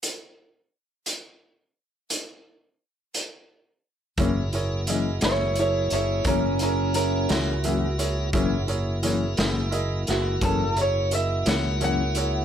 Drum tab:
HH |x--x--x--x--|xxxxxxxxxxxx|xxxxxxxxxxxx|
SD |------------|---o-----o--|---o-o---o--|
BD |------------|o-----o-----|o-----o-----|